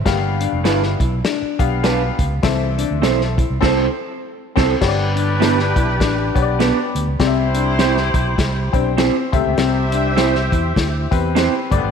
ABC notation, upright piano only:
X:1
M:4/4
L:1/8
Q:"Swing" 1/4=101
K:C
V:1 name="Upright piano"
[G,,_B,=B,Gf]3 z2 [B,Gf]2 z | [E,CAe]3 z [CA] z2 [CA] | [G,,B,G_d=d]3 z2 [B,G_d=d]2 z | [C,CGde]3 z2 [CGc]2 [C,CGe]- |
[C,CGe]2 z3 [CGB]2 [G,,A,B,Gd] |]